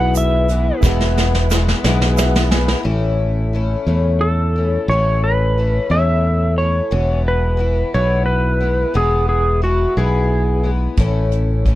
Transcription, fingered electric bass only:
0.00 0.71 B1 medium
0.83 1.72 E1 loud
1.84 2.74 B1 loud
2.85 3.75 A1 medium
3.86 4.76 E2 medium
4.88 5.78 A1 medium
5.90 6.80 E2 medium
6.92 7.82 E1 loud
7.94 8.84 B1 medium
8.95 9.85 E1 medium
9.97 10.86 B1 medium
10.98 11.75 A1 medium

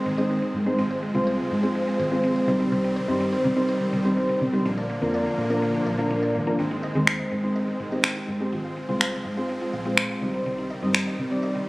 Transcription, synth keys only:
0.18 0.54 G#3 medium
0.18 0.54 C4 medium
0.18 0.54 D#4 medium
0.18 0.54 D#5 loud
0.66 0.78 G#3 medium
0.66 0.78 C4 medium
0.66 0.78 D#4 medium
0.66 0.78 C5 loud
1.14 1.50 G#3 medium
1.14 1.50 C4 medium
1.14 1.50 F4 medium
1.14 1.51 C5 medium
1.63 1.99 G#3 medium
1.63 1.99 C4 medium
1.63 1.99 F4 medium
1.63 1.99 C5 medium
2.11 2.47 G#3 medium
2.11 2.47 C4 medium
2.11 2.47 F4 medium
2.11 2.47 C5 loud
2.48 2.96 G3 medium
2.48 2.96 C4 medium
2.48 2.96 D#4 medium
2.48 2.96 C5 medium
3.08 3.44 G3 medium
3.08 3.44 C4 medium
3.08 3.44 D#4 medium
3.08 3.44 C5 loud
3.56 3.92 G3 medium
3.56 3.92 C4 medium
3.56 3.92 D#4 medium
3.56 3.92 C5 medium
4.05 4.41 G3 medium
4.05 4.41 C4 medium
4.05 4.41 D#4 medium
4.05 4.41 C5 loud
4.53 4.65 G3 medium
4.53 4.65 C4 medium
4.53 4.65 D#4 medium
4.53 4.66 C5 loud
5.02 5.37 F3 medium
5.02 5.37 A#3 medium
5.02 5.38 D4 medium
5.02 5.38 A#4 medium
5.50 5.86 F3 medium
5.50 5.86 A#3 medium
5.50 5.86 D4 medium
5.50 5.86 A#4 medium
5.98 6.34 F3 medium
5.98 6.34 A#3 medium
5.98 6.34 D4 medium
5.98 6.34 A#4 loud
6.47 6.59 F3 medium
6.47 6.59 A#3 medium
6.47 6.59 D4 medium
6.47 6.59 A#4 loud
6.95 7.31 G#3 medium
6.95 7.31 C4 medium
6.95 7.31 D#4 medium
6.95 7.31 C5 loud
7.43 7.79 G#3 medium
7.43 7.79 C4 medium
7.43 7.79 D#4 medium
7.43 7.80 C5 medium
7.92 8.28 G#3 medium
7.92 8.28 C4 medium
7.92 8.28 D#4 medium
7.92 8.28 G4 loud
8.40 8.52 G#3 medium
8.40 8.53 C4 medium
8.40 8.53 D#4 medium
8.40 8.53 G4 loud
8.89 9.24 G#3 medium
8.89 9.25 C4 medium
8.89 9.25 F4 medium
8.89 9.25 C5 loud
9.37 9.73 G#3 medium
9.37 9.73 C4 medium
9.37 9.73 F4 medium
9.37 9.73 C5 medium
9.85 10.21 G#3 medium
9.85 10.21 C4 medium
9.85 10.21 F4 medium
9.85 10.21 C5 loud
10.22 10.70 G3 medium
10.22 10.70 C4 medium
10.22 10.70 D#4 medium
10.22 10.71 C5 loud
10.82 11.18 G3 medium
10.82 11.18 C4 medium
10.82 11.18 D#4 medium
10.82 11.18 D#5 loud
11.31 11.66 G3 medium
11.31 11.67 C4 medium
11.31 11.67 D#4 medium
11.31 11.67 D5 medium

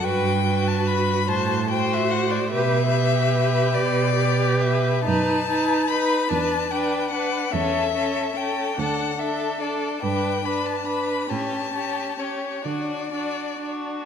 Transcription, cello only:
0.05 1.15 G2 medium
1.29 2.38 A2 medium
2.52 3.60 B2 medium
3.75 4.91 B2 medium
5.06 6.14 F#2 medium
6.31 7.36 E2 medium
7.54 8.62 E2 medium
8.78 9.85 D2 medium
10.03 11.13 G2 medium
11.31 12.47 A2 soft
12.65 13.89 D3 soft

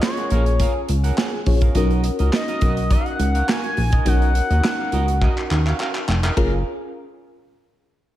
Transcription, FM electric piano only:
0.00 1.42 C#4 medium
0.00 1.42 F4 medium
0.00 1.43 G#4 medium
0.00 1.43 C#5 medium
1.46 1.74 C#4 medium
1.46 1.75 F4 medium
1.46 1.76 G#4 medium
1.46 1.76 C#5 medium
1.75 4.02 C#4 medium
1.75 4.02 D#4 medium
1.75 4.03 F#4 medium
1.75 4.03 A#4 medium
4.05 6.32 C#4 medium
4.05 6.33 D#4 medium
4.05 6.33 F#4 medium
4.05 6.33 A#4 medium
6.37 6.64 C#4 medium
6.37 6.64 F4 medium
6.37 6.64 G#4 medium
6.37 6.64 A#4 medium

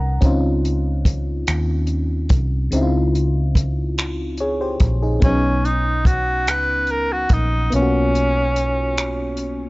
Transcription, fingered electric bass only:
0.00 0.18 C2 medium
0.23 1.43 C#2 medium
1.48 2.27 D#2 medium
2.31 2.68 C2 medium
2.73 4.77 C#2 medium
4.81 5.18 A#1 medium
5.23 6.48 B1 medium
6.48 7.27 C#2 medium
7.30 7.68 A#1 medium
7.73 9.69 B1 medium

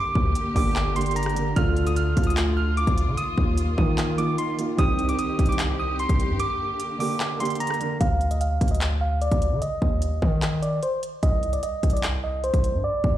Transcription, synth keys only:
0.00 0.52 D6 loud
0.56 0.94 D6 medium
0.96 1.13 C6 medium
1.16 1.54 A#5 medium
1.56 1.85 F6 loud
1.87 1.95 D#6 medium
1.97 2.25 F6 medium
2.27 2.35 D#6 medium
2.57 2.74 F6 medium
2.77 3.15 D6 medium
3.17 3.74 D#6 medium
3.78 4.16 D#6 medium
4.18 4.35 D6 medium
4.38 4.56 C6 medium
4.79 5.07 D#6 loud
5.09 5.17 D6 medium
5.19 5.47 D#6 medium
5.49 5.58 D6 medium
5.79 5.97 D#6 medium
6.00 6.37 C6 medium
6.40 6.96 D6 loud
7.00 7.38 D6 medium
7.40 7.58 C6 medium
7.60 7.98 A#5 medium
8.01 8.29 F5 loud
8.31 8.40 D#5 medium
8.41 8.69 F5 medium
8.71 8.80 D#5 medium
9.01 9.18 F5 medium
9.22 9.59 D5 medium
9.62 10.19 D#5 medium
10.22 10.60 D#5 medium
10.62 10.80 D5 medium
10.83 11.00 C5 medium
11.23 11.51 D#5 loud
11.53 11.62 D5 medium
11.63 11.92 D#5 medium
11.93 12.02 D5 medium
12.24 12.41 D#5 medium
12.44 12.82 C5 medium
12.84 13.18 D5 loud

